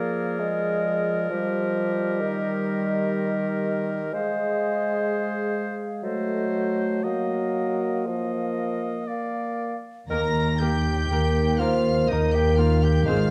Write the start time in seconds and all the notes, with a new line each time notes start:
Already playing: F3 A#3 G#4 A#4 D5
0.39 G#3
1.30 F3 G3 G4 D#5
2.21 D#3
4.13 G#3 G#4 C5 F5
6.03 F#3 A3 A4 C5 D#5
7.04 F#3 A#3 A#4 D#5 F5
8.06 F3 A#4 D#5 F5
9.07 A#4 D5 F5
10.09 D#2 D#3 A#3 A#4 A#5 A#6
10.59 A#3 G4 A#4 G5 G6
11.10 D#2 A#3 A#4
11.58 A#3 F4 A#4 C5 F5 F6
12.08 D#2 A#3 D#4 A#4 D#5 D#6
12.32 G4 G5 G6
12.56 A#3 F4 A#4 F5 F6
12.82 G4 G5 G6
13.05 G#1 G#2 D#3 C4 F4 G#4 C5 F5 F6